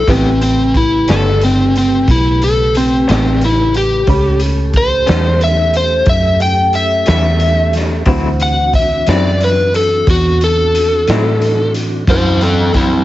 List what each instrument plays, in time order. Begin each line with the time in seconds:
0.07 fingered electric bass A1, clean electric guitar A2 G3 B3 C#4, tonewheel organ C#3 A3 G4 B4, electric slide guitar C4, upright piano E4 G4 B4, kick, closed hi-hat
0.41 electric slide guitar C4, closed hi-hat
0.74 electric slide guitar E4, kick, closed hi-hat
1.08 fingered electric bass G1, clean electric guitar A2 G3 B3 C#4, electric slide guitar A4, snare, closed hi-hat
1.41 electric slide guitar C4, closed hi-hat
1.75 electric slide guitar C4, closed hi-hat
2.08 fingered electric bass B1, electric slide guitar E4, kick, closed hi-hat
2.42 electric slide guitar A4, closed hi-hat
2.75 electric slide guitar C4, closed hi-hat
3.08 fingered electric bass A1, clean electric guitar A2 G3 B3 C#4, electric slide guitar C4, snare, closed hi-hat
3.41 electric slide guitar E4, closed hi-hat
3.74 electric slide guitar G4, closed hi-hat
4.06 fingered electric bass C#2, tonewheel organ A3 C#4 G4 A4, upright piano C#4 G4 B5, kick, closed hi-hat
4.39 closed hi-hat
4.73 electric slide guitar C5, kick, closed hi-hat
5.06 fingered electric bass E2, clean electric guitar A2 G3 B3 C#4, snare, closed hi-hat
5.41 electric slide guitar E5, closed hi-hat
5.73 electric slide guitar C5, closed hi-hat
6.06 fingered electric bass F#2, electric slide guitar E5, kick, closed hi-hat
6.40 electric slide guitar G5, closed hi-hat
6.73 electric slide guitar E5, closed hi-hat
7.06 fingered electric bass E2, clean electric guitar A2 G3 B3 C#4, electric slide guitar E5, snare, closed hi-hat
7.40 closed hi-hat
7.73 snare, closed hi-hat
8.06 fingered electric bass D2, clean electric guitar D3 F#3 C4 E4, tonewheel organ E3 C4 D4 F#4, upright piano C4 E4 F#4, kick, closed hi-hat
8.40 electric slide guitar F#5, closed hi-hat
8.73 electric slide guitar E5, kick, closed hi-hat
9.06 fingered electric bass F#2, clean electric guitar D3 F#3 C4 E4, electric slide guitar D5, snare, closed hi-hat
9.40 electric slide guitar B4, closed hi-hat
9.74 electric slide guitar A4, closed hi-hat
10.07 fingered electric bass E2, electric slide guitar F#4, kick, closed hi-hat
10.41 electric slide guitar A4, closed hi-hat
10.75 closed hi-hat
11.07 fingered electric bass A2, clean electric guitar F#3 C4 E4, snare, closed hi-hat
11.11 clean electric guitar D3
11.42 closed hi-hat
11.74 closed hi-hat
12.07 fingered electric bass F#2, tonewheel organ E3 F#3 C4 D4, upright piano E4 F#4 C5, electric slide guitar E4 C5, kick, closed hi-hat
12.41 electric slide guitar C4 A4, closed hi-hat
12.74 electric slide guitar C4 E4, kick, closed hi-hat